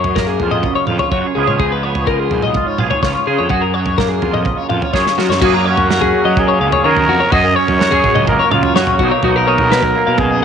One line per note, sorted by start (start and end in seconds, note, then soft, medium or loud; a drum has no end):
0.00 0.36 F#2 medium
0.00 1.36 F#2 medium
0.00 1.34 F#3 medium
0.00 1.13 G#4 medium
0.00 0.16 C#5 medium
0.04 floor tom medium
0.15 1.34 A#3 medium
0.15 0.28 A#4 medium
0.15 kick medium
0.15 snare medium
0.15 mid tom medium
0.28 0.52 G#4 medium
0.40 0.62 F2 medium
0.40 0.90 F4 medium
0.40 floor tom medium
0.51 0.75 D#5 medium
0.51 mid tom medium
0.63 1.34 C#3 medium
0.63 kick medium
0.63 floor tom medium
0.75 0.87 C#5 medium
0.87 0.99 F2 medium
0.87 1.38 F4 medium
0.87 0.99 F5 medium
0.87 mid tom medium
0.99 1.10 C#5 medium
0.99 floor tom medium
1.12 1.23 F#2 medium
1.12 1.26 F#4 medium
1.12 1.36 C#5 medium
1.12 kick medium
1.26 1.37 G#4 soft
1.35 1.47 C#2 medium
1.35 1.60 C#3 medium
1.35 1.60 F3 medium
1.35 1.84 B3 medium
1.35 2.09 F4 medium
1.35 1.48 G#4 medium
1.39 2.79 G#4 medium
1.47 1.59 C#2 medium
1.47 1.60 C#5 medium
1.47 mid tom medium
1.59 2.27 C#2 medium
1.59 3.53 F3 medium
1.59 1.72 G#4 medium
1.59 kick medium
1.59 floor tom medium
1.72 1.83 B4 medium
1.83 3.25 B3 medium
1.83 2.07 C#5 medium
1.95 floor tom medium
2.07 2.56 F4 medium
2.07 2.19 A#4 medium
2.07 kick medium
2.19 2.43 G#4 medium
2.31 2.53 B1 medium
2.31 3.25 G#2 medium
2.31 floor tom medium
2.42 2.67 D#5 medium
2.42 mid tom medium
2.54 3.04 F4 medium
2.54 kick medium
2.54 floor tom medium
2.67 2.79 C#5 medium
2.78 2.90 B1 medium
2.78 3.26 G#4 medium
2.78 2.90 F5 medium
2.78 mid tom medium
2.90 3.01 C#5 medium
2.90 floor tom medium
3.03 3.14 C#2 medium
3.03 3.53 F4 medium
3.03 3.27 C#5 medium
3.03 kick loud
3.03 snare medium
3.26 3.48 C#3 medium
3.26 3.38 C#3 medium
3.26 3.50 G#4 medium
3.26 3.39 G#4 medium
3.38 3.50 F2 medium
3.38 3.51 C#5 medium
3.49 5.40 F#2 medium
3.49 4.18 F#2 medium
3.49 3.63 F#4 medium
3.49 4.93 G#4 medium
3.49 kick medium
3.49 floor tom medium
3.61 3.74 A#4 medium
3.74 5.39 F#3 medium
3.74 3.98 C#5 medium
3.86 floor tom medium
3.98 5.40 A#3 medium
3.98 4.09 A#4 medium
3.98 kick medium
3.98 snare medium
3.98 mid tom medium
4.09 4.34 G#4 medium
4.22 4.44 F2 medium
4.22 4.70 F4 soft
4.22 floor tom medium
4.33 4.57 D#5 medium
4.33 mid tom medium
4.45 5.39 C#3 medium
4.45 kick medium
4.45 floor tom medium
4.57 4.69 C#5 medium
4.70 4.81 F2 medium
4.70 5.17 F4 soft
4.70 4.82 F5 medium
4.70 mid tom medium
4.82 4.92 C#5 medium
4.82 floor tom medium
4.93 5.05 F#2 medium
4.93 5.39 G#4 medium
4.93 5.18 C#5 medium
4.93 kick loud
4.93 snare soft
5.07 snare medium
5.18 5.28 F#3 medium
5.18 5.40 F4 soft
5.18 5.30 F#4 medium
5.18 snare medium
5.29 5.40 F#2 medium
5.29 5.42 C#5 medium
5.29 snare medium
5.41 7.32 F#2 medium
5.41 5.74 F#2 medium
5.41 6.13 F#3 medium
5.41 6.37 A#3 medium
5.41 5.66 C#4 medium
5.41 5.54 F#4 medium
5.41 6.84 G#4 medium
5.41 kick loud
5.41 floor tom medium
5.41 crash loud
5.54 5.66 A#4 medium
5.66 5.90 C#4 medium
5.66 6.41 F#4 medium
5.66 5.89 C#5 medium
5.77 5.99 F#2 medium
5.77 floor tom medium
5.89 7.57 C#4 medium
5.89 6.02 A#4 medium
5.89 snare medium
6.01 6.12 F#2 medium
6.01 6.26 G#4 medium
6.01 floor tom medium
6.14 7.37 F#3 medium
6.25 6.58 F#3 medium
6.25 6.48 D#5 medium
6.37 7.37 A#3 medium
6.37 6.87 G#4 medium
6.37 kick loud
6.37 floor tom medium
6.48 6.61 C#5 medium
6.60 6.72 C#2 medium
6.60 7.30 C#3 medium
6.60 6.72 F5 medium
6.72 6.83 C#5 medium
6.72 floor tom medium
6.84 7.06 D#3 medium
6.84 7.30 G#4 medium
6.84 7.33 A#4 loud
6.84 7.09 C#5 medium
6.96 floor tom medium
7.08 7.20 F2 medium
7.08 7.21 F#4 medium
7.20 7.33 C#5 medium
7.32 7.54 F#2 loud
7.32 9.00 F#2 medium
7.32 7.45 F#4 medium
7.32 7.81 G#4 medium
7.32 7.57 D#5 loud
7.32 kick loud
7.32 floor tom medium
7.44 7.56 A#4 medium
7.56 8.77 C#4 medium
7.56 8.27 C#5 loud
7.56 7.79 C#5 medium
7.68 7.90 F#2 medium
7.68 floor tom medium
7.79 7.93 F#4 medium
7.79 7.92 A#4 medium
7.79 snare medium
7.91 8.03 F#2 medium
7.91 8.16 G#4 medium
7.91 9.00 G#4 medium
7.91 floor tom medium
8.04 9.03 F#3 medium
8.04 kick medium
8.04 mid tom medium
8.15 8.37 C#2 medium
8.15 8.39 D#5 medium
8.15 mid tom medium
8.27 9.03 A#3 medium
8.27 8.54 A#4 medium
8.27 kick medium
8.27 floor tom medium
8.27 mid tom medium
8.39 8.51 C#5 medium
8.51 8.62 C#2 medium
8.51 8.98 C#3 medium
8.51 8.75 F4 medium
8.51 8.63 F5 medium
8.51 mid tom medium
8.63 8.75 C#5 medium
8.63 floor tom medium
8.75 8.97 F#2 medium
8.75 9.09 F#4 medium
8.75 9.00 C#5 medium
8.75 snare medium
8.80 9.02 C#4 medium
8.87 floor tom medium
8.99 9.10 B1 medium
8.99 10.20 B2 medium
8.99 9.71 F#3 medium
8.99 9.11 F#4 medium
8.99 kick medium
9.03 9.95 A#3 medium
9.03 9.24 D#4 medium
9.11 9.24 C#5 medium
9.23 9.56 B1 medium
9.23 9.47 D#4 medium
9.23 9.36 F#4 medium
9.23 floor tom medium
9.36 9.48 A#4 medium
9.47 10.42 D#4 medium
9.47 10.20 A#4 loud
9.47 9.71 C#5 medium
9.58 9.81 B1 medium
9.58 floor tom medium
9.72 10.45 F#3 medium
9.72 9.84 B4 medium
9.72 snare medium
9.82 9.94 B1 medium
9.82 10.07 A#4 medium
9.82 floor tom medium
9.95 10.45 A#3 medium
10.07 10.40 B2 medium
10.07 10.31 F5 medium
10.18 10.45 F#2 medium
10.18 10.45 G#4 medium
10.18 kick loud
10.18 floor tom medium
10.31 10.43 D#5 medium